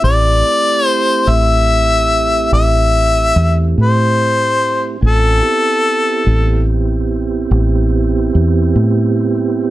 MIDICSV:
0, 0, Header, 1, 4, 480
1, 0, Start_track
1, 0, Key_signature, 0, "minor"
1, 0, Tempo, 831025
1, 15, Time_signature, 12, 3, 24, 8
1, 5605, End_track
2, 0, Start_track
2, 0, Title_t, "Harmonica"
2, 0, Program_c, 0, 22
2, 24, Note_on_c, 0, 74, 99
2, 498, Note_off_c, 0, 74, 0
2, 498, Note_on_c, 0, 72, 99
2, 745, Note_on_c, 0, 76, 98
2, 754, Note_off_c, 0, 72, 0
2, 1461, Note_off_c, 0, 76, 0
2, 1464, Note_on_c, 0, 76, 92
2, 2109, Note_off_c, 0, 76, 0
2, 2207, Note_on_c, 0, 72, 83
2, 2889, Note_off_c, 0, 72, 0
2, 2929, Note_on_c, 0, 69, 83
2, 3851, Note_off_c, 0, 69, 0
2, 5605, End_track
3, 0, Start_track
3, 0, Title_t, "Tonewheel organ"
3, 0, Program_c, 1, 16
3, 8, Note_on_c, 1, 64, 58
3, 12, Note_on_c, 1, 60, 61
3, 12, Note_on_c, 1, 67, 59
3, 13, Note_on_c, 1, 57, 56
3, 2871, Note_off_c, 1, 64, 0
3, 2873, Note_off_c, 1, 57, 0
3, 2873, Note_off_c, 1, 60, 0
3, 2873, Note_off_c, 1, 67, 0
3, 2888, Note_on_c, 1, 60, 54
3, 2894, Note_on_c, 1, 65, 54
3, 2895, Note_on_c, 1, 80, 53
3, 2898, Note_on_c, 1, 61, 53
3, 3120, Note_off_c, 1, 60, 0
3, 3124, Note_on_c, 1, 64, 54
3, 3126, Note_on_c, 1, 60, 58
3, 3126, Note_on_c, 1, 67, 57
3, 3127, Note_on_c, 1, 59, 62
3, 3136, Note_off_c, 1, 65, 0
3, 3136, Note_off_c, 1, 80, 0
3, 3138, Note_off_c, 1, 61, 0
3, 5605, Note_off_c, 1, 59, 0
3, 5605, Note_off_c, 1, 60, 0
3, 5605, Note_off_c, 1, 64, 0
3, 5605, Note_off_c, 1, 67, 0
3, 5605, End_track
4, 0, Start_track
4, 0, Title_t, "Fingered electric bass"
4, 0, Program_c, 2, 33
4, 22, Note_on_c, 2, 33, 86
4, 240, Note_off_c, 2, 33, 0
4, 735, Note_on_c, 2, 33, 81
4, 1433, Note_off_c, 2, 33, 0
4, 1458, Note_on_c, 2, 33, 78
4, 1915, Note_off_c, 2, 33, 0
4, 1941, Note_on_c, 2, 40, 77
4, 2160, Note_off_c, 2, 40, 0
4, 2182, Note_on_c, 2, 45, 69
4, 2877, Note_off_c, 2, 45, 0
4, 2901, Note_on_c, 2, 33, 85
4, 3121, Note_off_c, 2, 33, 0
4, 3619, Note_on_c, 2, 33, 78
4, 4316, Note_off_c, 2, 33, 0
4, 4339, Note_on_c, 2, 33, 83
4, 4795, Note_off_c, 2, 33, 0
4, 4822, Note_on_c, 2, 40, 76
4, 5041, Note_off_c, 2, 40, 0
4, 5058, Note_on_c, 2, 45, 79
4, 5605, Note_off_c, 2, 45, 0
4, 5605, End_track
0, 0, End_of_file